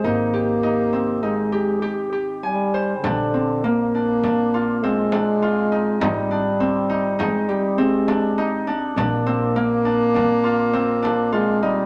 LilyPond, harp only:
\new Staff \with { instrumentName = "Harp" } { \time 5/4 \key bes \mixolydian \tempo 4 = 101 ees'8 g'8 ees'8 c'8 ees'8 g'8 g'8 g'8 aes''8 c''8 | d'8 c'8 bes8 d'8 d'8 f'8 c'8 d'8 f'8 ees'8 | ees'8 d'8 c'8 ees'8 ees'8 g'8 c'8 d'8 ees'8 d'8 | d'8 c'8 bes8 d'8 d'8 f'8 c'8 d'8 f'8 ees'8 | }